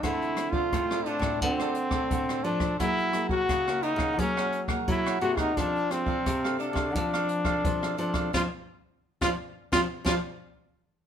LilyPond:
<<
  \new Staff \with { instrumentName = "Cavaquinho" } { \time 4/4 \key f \major \tempo 4 = 87 <a' c'' d''>8 r16 <a' c'' d''>16 <f' a' c'' d''>16 <a' c'' d''>16 <f' a' c'' d''>16 <a' c'' d''>16 <f' a' c'' d''>16 <a' c'' d''>16 r16 <a' c'' d''>8 <a' c'' d''>16 <f' a' c'' d''>16 <a' c'' d''>16 | <fes' bes' des'' ges''>8 r16 <bes' des'' ges''>16 <fes' bes' des'' ges''>16 <bes' des'' ges''>16 <fes' bes' des'' ges''>16 <bes' des'' ges''>16 <fes' bes' des'' ges''>16 <bes' des'' ges''>16 r16 <bes' des'' ges''>8 <bes' des'' ges''>16 <fes' bes' des'' ges''>16 <bes' des'' ges''>16 | <d' a' d'' f''>8 r16 <a' d'' f''>16 <d' a' d'' f''>16 <a' d'' f''>16 <d' a' d'' f''>16 <a' d'' f''>16 <d' a' d'' f''>16 <a' d'' f''>16 r16 <a' d'' f''>8 <a' d'' f''>16 <d' a' d'' f''>16 <a' d'' f''>16 | <c'' d'' f''>16 r4 <c'' d'' f''>16 r8 <c'' d'' f''>16 r16 <c'' d'' f''>16 r4 r16 | }
  \new Staff \with { instrumentName = "Trombone" } { \time 4/4 \key f \major e'8. f'8. d'8 c'4. d'8 | fes'8. ges'8. ees'8 des'8 r8 fes'8 ges'16 ees'16 | d'8 c'4 d'2 d'8 | f'16 r4 f'16 r8 f'16 r16 f'16 r4 r16 | }
  \new Staff \with { instrumentName = "Nylon-string guitar" } { \time 4/4 \key f \major << { <a c' f'>8 <a c' f'>8. <a c' f'>8 <a c' f'>16 <a c' f'>8 r16 <a c' f'>8. <a c' f'>16 r16 | <bes fes' aes'>8 <bes fes' aes'>8. <bes fes' aes'>8. <bes fes' aes'>8. <bes fes' aes'>8. <bes fes' aes'>8 | <c' d' a'>16 r16 <c' d' a'>8 r16 <c' d' a'>8. <c' d' a'>8. <c' d' a'>8. <c' d' a'>8 | <c' d' f'>16 r4 <c' d' f'>16 r8 <c' d' f'>16 r16 <c' d' f'>16 r4 r16 | } \\ { d4 a,4 d4 a,4 | ges4 des4 ges4 r4 | f4 c4 f4 c4 | r1 | } >> }
  \new Staff \with { instrumentName = "Nylon-string guitar" } { \clef bass \time 4/4 \key f \major d4 a,8. a,16 d4 d8 f8 | ges4 des8. des16 ges4 ges8 c8 | f4 c8. c16 f4 f8 f8 | f16 r4 f16 r8 f16 r16 f16 r4 r16 | }
  \new DrumStaff \with { instrumentName = "Drums" } \drummode { \time 4/4 <hh bd ss>16 hh16 <hh ss>16 bd16 <hh bd ss>16 ss16 hh16 <hh bd ss>16 <hh bd>16 <hh ss>16 hh16 <bd ss>16 <hh bd>16 <hh ss>16 hh16 <hh bd ss>16 | <hh bd ss>16 hh16 <hh ss>16 bd16 <hh bd ss>16 <hh ss>16 hh16 <bd ss>16 <hh bd>16 ss16 hh16 <hh bd ss>16 <hh bd>16 <hh ss>16 hh16 <hh bd ss>16 | <hh bd ss>16 hh16 <hh ss>16 bd16 <hh bd ss>16 ss16 hh16 <hh bd ss>16 <hh bd>16 <hh ss>16 hh16 <bd ss>16 <hh bd>16 <hh ss>16 hh16 <hh bd ss>16 | <bd sn>4 r16 <bd sn>8. <bd sn>8 <bd sn>8 r4 | }
>>